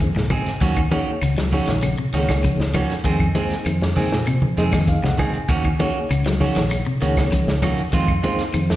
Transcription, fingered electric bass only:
0.16 0.28 C2 medium
0.46 muted fingered electric bass stroke soft
0.61 0.86 D#2 medium
1.22 1.60 C#2 medium
1.68 1.93 A#1 medium
2.13 2.51 C#2 medium
2.59 2.84 C#2 medium
3.05 3.30 F2 medium
3.66 3.91 F2 medium
4.12 4.37 A#2 medium
4.58 4.95 F2 medium
5.03 5.16 C2 medium
5.34 muted fingered electric bass stroke soft
5.49 5.74 D#2 medium
6.10 6.48 C#2 medium
6.56 6.81 A#1 medium
7.02 7.40 C#2 medium
7.48 7.73 C#2 medium
7.93 8.18 F2 loud
8.54 8.76 F2 medium

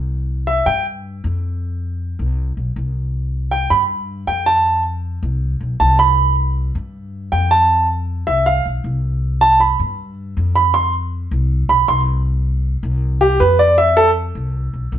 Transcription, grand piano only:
0.47 0.65 E5 medium
0.66 0.84 G5 medium
3.51 3.70 G5 medium
3.70 3.82 B5 medium
4.27 4.46 G5 medium
4.46 4.82 A5 medium
5.80 5.98 A5 medium
5.99 6.34 B5 loud
7.32 7.50 G5 medium
7.51 7.86 A5 medium
8.27 8.45 E5 medium
8.46 8.65 F5 medium
9.41 9.60 A5 medium
9.60 9.79 B5 medium
10.55 10.74 B5 medium
10.74 10.92 C6 loud
11.69 11.88 B5 medium
11.88 12.00 C6 medium
13.21 13.39 G4 medium
13.40 13.58 B4 medium
13.59 13.78 D5 medium
13.78 13.96 E5 medium
13.97 14.08 A4 loud

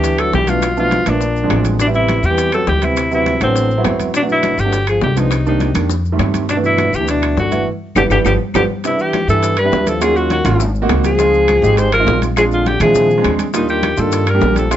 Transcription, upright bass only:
0.00 0.29 D2 medium
0.32 1.00 B1 medium
1.06 1.47 A#1 medium
1.50 2.18 A1 medium
2.23 2.64 E2 medium
2.67 3.35 D2 medium
3.41 3.82 A1 medium
3.84 4.53 G1 medium
4.58 4.99 G1 medium
5.02 5.70 C2 medium
5.74 6.16 F2 medium
6.19 6.87 G2 medium
6.93 7.34 D2 medium
7.37 7.64 G1 medium
7.95 8.06 G1 medium
8.10 8.21 G1 medium
8.24 8.36 G1 medium
8.54 8.65 G1 medium
9.28 9.69 G2 medium
9.72 10.40 D#2 medium
10.45 10.86 G#1 medium
10.89 11.57 C#2 medium
11.62 12.04 G#1 medium
12.06 12.75 A#1 medium
12.80 13.21 A#2 medium
13.24 13.92 D#2 medium
13.97 14.39 G2 medium
14.41 14.77 A#1 medium

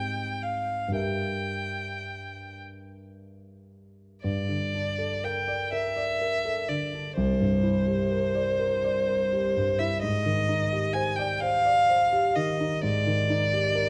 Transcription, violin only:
0.00 0.44 G5 soft
0.42 0.96 F5 soft
0.96 2.59 G5 medium
4.23 5.25 D5 medium
5.24 5.72 G5 medium
5.73 6.70 E5 medium
6.69 7.16 D5 medium
7.16 9.80 C5 medium
9.79 10.02 E5 medium
10.02 10.95 D#5 medium
10.93 11.17 G#5 medium
11.16 11.42 G5 medium
11.40 12.37 F5 medium
12.35 12.83 D#5 medium
12.84 13.89 D5 medium

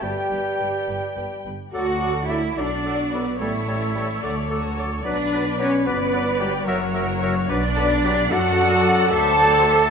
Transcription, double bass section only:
0.02 0.10 G1 medium
0.31 0.39 G1 soft
0.60 0.68 G1 soft
0.88 0.96 G1 medium
1.17 1.25 G1 soft
1.46 1.54 G1 soft
1.74 2.54 D2 medium
2.58 3.41 B1 medium
3.41 4.23 A1 medium
4.24 5.04 D2 medium
5.06 5.86 B1 medium
5.87 6.67 G1 medium
6.66 7.48 F#1 medium
7.50 8.29 B1 medium
8.31 9.11 F#2 medium
9.11 9.90 D2 medium

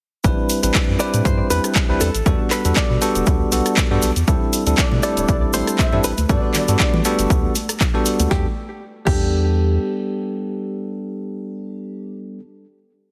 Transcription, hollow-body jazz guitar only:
1.00 1.25 D5 loud
1.25 1.50 C5 loud
1.50 2.02 B4 loud
2.01 2.48 A4 medium
2.51 2.75 B4 loud
2.77 3.73 D5 medium
5.03 5.53 D5 loud
5.54 6.04 C5 loud
6.04 7.77 B4 medium
8.31 8.46 G4 medium
9.07 12.39 G4 medium

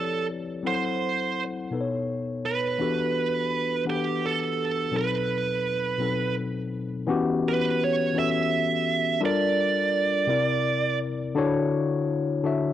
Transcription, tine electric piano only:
0.00 0.66 F3 medium
0.00 0.64 C4 medium
0.00 0.65 E4 medium
0.00 0.66 G4 medium
0.00 0.66 A4 medium
0.00 0.66 B4 medium
0.00 0.66 C#5 soft
0.00 0.42 D5 medium
0.63 1.44 F#3 medium
0.63 1.45 C4 medium
0.63 1.45 E4 medium
0.63 1.46 A4 medium
0.63 1.46 F#5 medium
1.71 2.52 B2 medium
1.71 2.52 B3 medium
1.71 2.52 D#4 medium
1.71 2.53 A4 medium
1.71 1.80 B4 medium
1.81 2.57 C#5 medium
2.78 3.59 E3 medium
2.78 3.59 B3 medium
2.78 3.60 D4 medium
2.78 3.60 F#4 medium
2.78 3.61 G4 medium
2.78 3.61 A4 medium
3.85 4.66 E3 medium
3.85 4.66 B3 soft
3.85 4.67 D4 soft
3.85 4.67 G4 soft
3.85 3.94 A4 soft
3.85 4.67 F#5 soft
3.95 4.71 B4 medium
4.91 5.73 B2 medium
4.91 5.73 F#3 medium
4.91 5.73 C4 medium
4.91 5.74 D#4 medium
4.91 5.74 A4 medium
5.98 6.80 B2 medium
5.98 6.80 F#3 medium
5.98 6.81 C4 medium
5.98 6.81 D#4 medium
5.98 6.82 A4 medium
7.07 7.88 E3 loud
7.07 7.88 B3 medium
7.07 7.88 C#4 medium
7.07 7.89 F#4 medium
7.07 7.89 G4 loud
8.13 8.94 E3 medium
8.13 8.95 B3 medium
8.13 8.95 C#4 medium
8.13 8.96 F#4 medium
8.18 8.96 A4 medium
9.20 10.01 G3 medium
9.20 10.02 D4 medium
9.20 10.02 F4 medium
9.20 10.03 A4 medium
9.20 10.03 A#4 medium
10.27 11.08 C3 medium
10.27 11.09 C4 medium
10.27 11.09 E4 medium
10.27 11.09 A#4 medium
10.27 11.10 D5 medium
11.35 12.16 D3 loud
11.35 12.16 D4 medium
11.35 12.17 E4 medium
11.35 12.17 F#4 medium
11.35 12.18 C#5 loud
12.43 12.73 D3 medium
12.43 12.73 D4 medium
12.43 12.73 E4 medium
12.43 12.73 F#4 medium
12.43 12.73 E5 medium

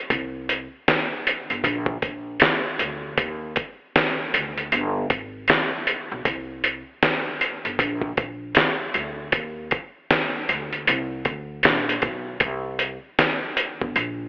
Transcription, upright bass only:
0.10 0.65 C2 loud
1.50 1.63 G1 medium
1.64 1.98 A#1 loud
2.03 2.36 A#1 medium
2.80 3.13 D2 medium
3.18 3.52 D#2 loud
4.34 4.67 D2 medium
4.72 5.06 G1 loud
5.11 5.44 G#1 medium
6.12 6.24 B1 loud
6.26 6.80 C2 loud
7.65 7.77 G1 medium
7.79 8.13 A#1 loud
8.18 8.52 A#1 medium
8.95 9.28 D2 medium
9.33 9.67 D#2 loud
10.49 10.83 D2 medium
10.88 11.21 C2 loud
11.26 11.59 D2 medium
11.65 11.98 A#1 medium
12.03 12.36 B1 medium
12.41 12.96 C2 loud
13.82 13.94 G1 medium
13.96 14.29 A#1 loud

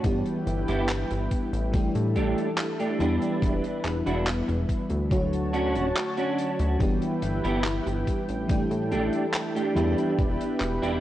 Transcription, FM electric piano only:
0.03 1.64 E3 medium
0.03 1.65 G3 medium
0.03 1.65 B3 medium
0.03 1.65 D4 medium
0.03 1.66 G4 medium
1.72 2.91 E3 medium
1.72 2.91 G3 medium
1.72 2.92 A3 medium
1.72 2.92 D4 medium
1.72 2.93 G4 medium
2.99 5.02 E3 medium
2.99 5.03 G3 medium
2.99 5.03 B3 medium
2.99 5.04 D4 medium
5.10 6.71 D3 medium
5.10 6.72 F#3 medium
5.10 6.72 A3 medium
5.10 6.73 F#4 medium
5.10 6.72 C#5 medium
6.79 8.40 E3 medium
6.79 8.41 G3 medium
6.79 8.41 B3 medium
6.79 8.41 D4 medium
6.79 8.42 G4 medium
8.48 9.67 E3 medium
8.48 9.67 G3 medium
8.48 9.68 A3 medium
8.48 9.68 D4 medium
8.48 9.69 G4 medium
9.75 11.00 E3 medium
9.75 11.00 G3 medium
9.75 11.00 B3 medium
9.75 11.00 D4 medium
9.75 11.00 G4 loud

